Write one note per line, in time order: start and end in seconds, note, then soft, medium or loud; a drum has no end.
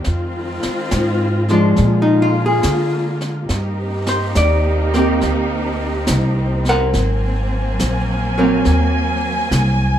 0.00 0.62 D5 medium
0.04 0.60 F2 medium
0.04 1.77 D#3 medium
0.04 3.47 G#3 medium
0.04 1.77 C4 medium
0.04 1.77 F4 medium
0.04 brush sweep soft
0.04 snare soft
0.63 muted upright bass stroke soft
0.63 snare soft
0.91 1.75 G#2 medium
0.91 snare soft
0.91 hi-hat pedal soft
1.48 2.58 F3 medium
1.48 2.59 G#3 medium
1.48 2.02 D4 medium
1.48 snare soft
1.76 2.62 A#2 medium
1.76 3.49 D3 medium
1.76 3.49 A#3 medium
1.76 3.48 F4 medium
1.76 brush sweep soft
1.76 snare soft
2.02 2.32 D#4 medium
2.22 2.42 F4 medium
2.46 3.30 G#4 medium
2.63 3.47 D3 medium
2.63 snare soft
2.63 hi-hat pedal soft
3.21 snare soft
3.49 4.33 G2 medium
3.49 6.91 A#3 medium
3.49 9.99 C4 medium
3.49 6.91 D#4 medium
3.49 6.91 G4 medium
3.49 brush sweep soft
3.49 snare soft
4.07 4.37 C5 medium
4.07 snare soft
4.35 5.19 D#2 medium
4.35 4.96 D5 medium
4.35 snare soft
4.35 hi-hat pedal soft
4.93 6.02 A#3 medium
4.93 6.02 C4 medium
4.93 6.63 G4 soft
4.93 snare soft
5.21 6.06 D2 medium
5.21 brush sweep soft
5.21 snare soft
6.07 6.92 C2 medium
6.07 snare medium
6.07 hi-hat pedal medium
6.65 snare soft
6.69 8.35 A#4 medium
6.69 8.35 C5 medium
6.69 7.77 F#5 medium
6.93 7.77 G#1 medium
6.93 9.99 F#3 medium
6.93 9.99 A#3 medium
6.93 9.99 G#5 medium
6.93 brush sweep soft
6.93 snare soft
7.79 8.63 A#1 medium
7.79 snare soft
7.79 hi-hat pedal soft
8.38 9.46 F#3 medium
8.38 9.46 A#3 medium
8.38 9.47 C4 medium
8.65 9.49 D#2 medium
8.65 brush sweep soft
8.65 snare soft
9.51 9.99 C2 medium
9.51 snare soft
9.51 hi-hat pedal soft